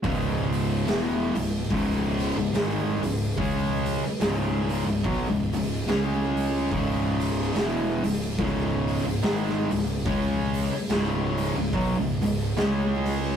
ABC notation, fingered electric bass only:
X:1
M:4/4
L:1/16
Q:"Swing" 1/4=72
K:C#m
V:1 name="Fingered electric bass" clef=bass
C,,,4 E,,,2 C,,,2 C,,,3 C,,, G,,,2 C,,,2 | C,,3 z C,,,3 C,,, B,,, C,,, C,,,2 C,,4 | C,,,4 E,,,2 C,,,2 C,,,3 C,,, G,,,2 C,,,2 | C,,3 z C,,,3 C,,, B,,, C,,, C,,,2 C,,4 |]